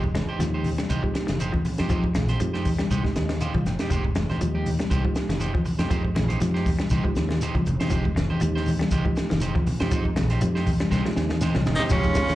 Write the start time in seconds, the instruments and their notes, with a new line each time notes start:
Already playing: fingered electric bass F1, clean electric guitar F3
0.04 muted clean electric guitar stroke, kick
0.14 fingered electric bass F1, clean electric guitar G#3, muted clean electric guitar stroke, snare, closed hi-hat, high conga, shekere
0.28 clean electric guitar D#4 G4 C5, muted fingered electric bass stroke
0.39 fingered electric bass D#2, clean electric guitar F3, reed electric piano G#3 D#4 G4, muted clean electric guitar stroke, snare, closed hi-hat, shekere
0.54 clean electric guitar D#4 G4 C5
0.64 open hi-hat, high conga, low conga, shekere
0.78 clean electric guitar G3, muted clean electric guitar stroke, snare, closed hi-hat
0.89 fingered electric bass C2, clean electric guitar G#3 D#4 G4 C5, kick, closed hi-hat, high conga, shekere
1.03 clean electric guitar F3, reed electric piano G#3 D#4 G4, muted clean electric guitar stroke, kick
1.14 muted clean electric guitar stroke, muted fingered electric bass stroke, snare, closed hi-hat, shekere
1.27 fingered electric bass F1, clean electric guitar D#3, snare, closed hi-hat, high conga
1.40 clean electric guitar G#3 D#4 G4 C5, closed hi-hat, shekere
1.52 clean electric guitar F3, muted clean electric guitar stroke, kick, high conga
1.65 muted clean electric guitar stroke, open hi-hat, low conga, shekere
1.78 fingered electric bass F2, reed electric piano G#3 D#4 G4, clean electric guitar D#4 G4 C5, snare, closed hi-hat
1.89 fingered electric bass F2, clean electric guitar F3 G#3 D#4 G4 C5, kick, closed hi-hat, shekere
2.04 muted clean electric guitar stroke, kick
2.15 fingered electric bass A#1, clean electric guitar G#3, muted clean electric guitar stroke, snare, closed hi-hat, high conga, shekere
2.28 clean electric guitar G4 C5, muted clean electric guitar stroke, snare, closed hi-hat
2.40 fingered electric bass F2, clean electric guitar F3, reed electric piano G#3 D#4 G4, muted clean electric guitar stroke, closed hi-hat, shekere
2.54 clean electric guitar D#4 G4 C5, snare
2.65 kick, open hi-hat, high conga, low conga, shekere
2.79 clean electric guitar G3, muted clean electric guitar stroke, snare, closed hi-hat
2.91 fingered electric bass C2, clean electric guitar G#3 D#4 G4 C5, kick, closed hi-hat, shekere
3.04 reed electric piano G#3 D#4 G4, muted clean electric guitar stroke, kick, snare
3.16 fingered electric bass D#2, reed electric piano D#5, muted clean electric guitar stroke, snare, closed hi-hat, shekere
3.29 clean electric guitar D#3, snare, high conga
3.41 clean electric guitar G#3 D#4 G4 C5, reed electric piano F5, closed hi-hat, shekere
3.54 fingered electric bass C2, clean electric guitar F3, muted clean electric guitar stroke, kick, high conga
3.65 fingered electric bass F1, reed electric piano G5, muted clean electric guitar stroke, snare, closed hi-hat, low conga, shekere
3.79 reed electric piano G#3 D#4 G4, clean electric guitar D#4 G4, muted clean electric guitar stroke, snare, closed hi-hat
3.90 fingered electric bass F1, clean electric guitar G#3 D#4 G4 C5, muted clean electric guitar stroke, kick, closed hi-hat, shekere
4.05 muted clean electric guitar stroke, kick
4.15 fingered electric bass F1, clean electric guitar G#3, muted clean electric guitar stroke, snare, closed hi-hat, high conga, shekere
4.30 clean electric guitar D#4 G4 C5, snare, high conga, low conga
4.41 fingered electric bass D#2, clean electric guitar F3, reed electric piano G#3 D#4 G4, muted clean electric guitar stroke, closed hi-hat, shekere
4.55 clean electric guitar D#4 G4
4.66 open hi-hat, high conga, low conga, shekere
4.79 clean electric guitar G3, muted clean electric guitar stroke, snare, closed hi-hat
4.90 fingered electric bass C2, clean electric guitar G#3 D#4 G4 C5, kick, closed hi-hat, shekere
5.04 clean electric guitar F3, reed electric piano G#3 D#4 G4, muted clean electric guitar stroke, kick
5.15 muted clean electric guitar stroke, muted fingered electric bass stroke, snare, closed hi-hat, shekere
5.29 fingered electric bass F1, clean electric guitar D#3, snare, closed hi-hat, high conga
5.40 clean electric guitar G#3 D#4 G4 C5, closed hi-hat, shekere
5.53 clean electric guitar F3, muted clean electric guitar stroke, kick, high conga
5.65 muted clean electric guitar stroke, open hi-hat, low conga, shekere
5.78 fingered electric bass F2, reed electric piano G#3 D#4 G4, clean electric guitar D#4 G4 C5, snare, closed hi-hat
5.90 fingered electric bass F2, clean electric guitar F3 G#3 D#4 G4 C5, kick, closed hi-hat, shekere
6.04 muted clean electric guitar stroke, kick
6.15 fingered electric bass A#1, clean electric guitar G#3, muted clean electric guitar stroke, snare, closed hi-hat, high conga, shekere
6.29 clean electric guitar D#4 G4 C5, closed hi-hat, low conga
6.40 fingered electric bass F2, clean electric guitar F3, reed electric piano G#3 D#4 G4, muted clean electric guitar stroke, snare, closed hi-hat, shekere
6.54 clean electric guitar D#4 G4 C5, snare
6.66 kick, open hi-hat, high conga, low conga, shekere
6.79 clean electric guitar G3, muted clean electric guitar stroke, snare, closed hi-hat
6.90 fingered electric bass C2, clean electric guitar G#3 D#4 G4 C5, kick, closed hi-hat, high conga, shekere
7.04 clean electric guitar F3, reed electric piano G#3 D#4 G4, muted clean electric guitar stroke, kick
7.15 fingered electric bass D#2, muted clean electric guitar stroke, snare, closed hi-hat, shekere
7.29 clean electric guitar D#3, snare, high conga
7.41 clean electric guitar G#3 D#4 G4 C5, closed hi-hat, shekere
7.55 fingered electric bass C2, clean electric guitar F3, muted clean electric guitar stroke, kick, high conga
7.66 fingered electric bass F1, muted clean electric guitar stroke, closed hi-hat, low conga, shekere
7.80 reed electric piano G#3 D#4 G4, clean electric guitar D#4 G4 C5, snare, closed hi-hat, high conga
7.90 fingered electric bass F1, clean electric guitar F3 G#3 D#4 G4 C5, kick, closed hi-hat, shekere
8.05 muted clean electric guitar stroke, kick
8.16 fingered electric bass F1, muted clean electric guitar stroke, snare, closed hi-hat, high conga, shekere
8.30 clean electric guitar D#4 G4 C5, muted fingered electric bass stroke, high conga
8.40 fingered electric bass D#2, reed electric piano G#3 D#4 G4, muted clean electric guitar stroke, closed hi-hat, shekere
8.55 clean electric guitar D#4 G4 C5, snare
8.66 open hi-hat, high conga, low conga, shekere
8.79 clean electric guitar G3, muted clean electric guitar stroke, snare, closed hi-hat
8.91 fingered electric bass C2, clean electric guitar G#3 D#4 G4 C5, kick, closed hi-hat, high conga, shekere
9.05 clean electric guitar F3, reed electric piano G#3 D#4 G4, muted clean electric guitar stroke, kick
9.16 muted clean electric guitar stroke, muted fingered electric bass stroke, snare, closed hi-hat, shekere
9.30 fingered electric bass F1, clean electric guitar D#3, snare, closed hi-hat, high conga
9.40 clean electric guitar G#3 D#4 G4 C5, closed hi-hat, shekere
9.55 clean electric guitar F3, muted clean electric guitar stroke, kick, high conga
9.67 muted clean electric guitar stroke, open hi-hat, low conga, shekere
9.80 fingered electric bass F2, reed electric piano G#3 D#4 G4, clean electric guitar D#4 G4 C5, snare, high conga
9.91 fingered electric bass F2, clean electric guitar F3 G#3 D#4 C5, muted clean electric guitar stroke, kick, closed hi-hat, shekere
10.05 muted clean electric guitar stroke, kick
10.16 fingered electric bass A#1, clean electric guitar G#3, muted clean electric guitar stroke, snare, closed hi-hat, high conga, shekere
10.30 clean electric guitar D#4 G4 C5, snare, closed hi-hat
10.41 fingered electric bass F2, clean electric guitar F3, reed electric piano G#3 D#4 G4, muted clean electric guitar stroke, closed hi-hat, shekere
10.55 clean electric guitar D#4 G4 C5, snare
10.66 kick, open hi-hat, high conga, low conga, shekere
10.80 clean electric guitar G3, muted clean electric guitar stroke, snare, closed hi-hat
10.91 fingered electric bass C2, clean electric guitar G#3 D#4 G4 C5, kick, snare, shekere
11.05 clean electric guitar F3, reed electric piano G#3 D#4 G4, muted clean electric guitar stroke, snare
11.16 fingered electric bass D#2, reed electric piano G#5, muted clean electric guitar stroke, snare, shekere
11.29 clean electric guitar D#3, snare, high conga
11.41 clean electric guitar G#3 D#4 G4 C5, reed electric piano G5, snare, high conga, shekere
11.55 fingered electric bass C2, clean electric guitar F3, muted clean electric guitar stroke, snare, low conga
11.66 fingered electric bass F1, reed electric piano D#5, muted clean electric guitar stroke, snare, low conga, shekere
11.75 baritone saxophone D#3, tenor saxophone D#4, trumpet G4
11.79 reed electric piano G#3 D#4 G4, clean electric guitar D#4 G4 C5, snare, low conga
11.90 fingered electric bass F1, baritone saxophone C#3, clean electric guitar F3 G#3 D#4 G4 C5, reed electric piano G#3 D#4 G4, tenor saxophone C#4, trumpet F4, kick, snare, crash, high conga, low conga, shekere
12.03 muted clean electric guitar stroke, kick, closed hi-hat, shekere
12.15 clean electric guitar G#3, kick, snare, closed hi-hat, shekere
12.28 fingered electric bass D#2, muted clean electric guitar stroke, snare, closed hi-hat, shekere